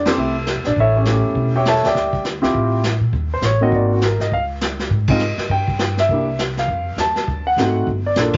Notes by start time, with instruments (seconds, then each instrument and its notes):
Already playing: upright bass F2
0.05 grand piano C4 G4 A4 C5, snare, ride
0.17 upright bass C2, grand piano A3 C4 E4 G4, brush sweep
0.46 snare, hi-hat pedal
0.56 upright bass E2
0.64 upright bass A#1, grand piano D4 D5, snare
0.76 upright bass A1, brush sweep, kick
0.80 grand piano E4 A4 C#5 E5
0.96 grand piano C#4 G4 A4 C#5
1.05 grand piano A3 C#4 E4 G4, snare, hi-hat pedal
1.24 upright bass E2
1.34 upright bass E1, brush sweep, kick
1.56 grand piano G4 C#5 E5 G5
1.65 grand piano A4 C#5 E5 A5, snare, hi-hat pedal
1.75 snare
1.83 upright bass D#2, grand piano G5, snare
1.85 grand piano G4 D5 E5, snare
1.95 upright bass D2, brush sweep, kick, snare
2.13 kick
2.24 snare, hi-hat pedal
2.42 upright bass C#2, grand piano C4 E4 F4 G4, snare
2.54 upright bass A1, brush sweep, kick
2.83 snare, hi-hat pedal
3.00 upright bass A#2
3.13 upright bass D#2, brush sweep, kick
3.34 grand piano C5
3.41 upright bass A1, grand piano C#5, snare, hi-hat pedal
3.61 grand piano A#3 C4 D#4 F#4 D#5
3.71 upright bass G#1, grand piano D5, brush sweep, kick
3.93 grand piano F#4
4.01 grand piano A#4, snare, hi-hat pedal
4.19 upright bass G#2, grand piano D#5, snare
4.31 upright bass C#2, grand piano F5, brush sweep, kick
4.61 snare, hi-hat pedal
4.79 snare
4.90 upright bass G#2, brush sweep, kick
5.07 grand piano G#3 C4 D#4 F4 D#5, kick, ride
5.19 hi-hat pedal
5.37 muted upright bass stroke, snare
5.49 upright bass G2, grand piano G5, brush sweep, kick
5.68 kick
5.79 snare, hi-hat pedal
5.97 grand piano E5, snare
6.09 upright bass C2, grand piano A#3 D4 E4 G4, brush sweep, kick
6.39 snare, hi-hat pedal
6.57 grand piano F5, snare
6.68 upright bass F2, brush sweep, kick
6.97 upright bass D#2, grand piano A5, snare, hi-hat pedal
7.16 snare
7.27 upright bass D2, brush sweep, kick
7.47 grand piano F#5
7.57 upright bass G#1, grand piano A3 C4 D#4 F#4, snare, hi-hat pedal
7.86 upright bass G1, brush sweep, kick
8.06 grand piano D5
8.16 upright bass A#1, grand piano A#3 D4 F4 A4, snare, hi-hat pedal
8.33 ride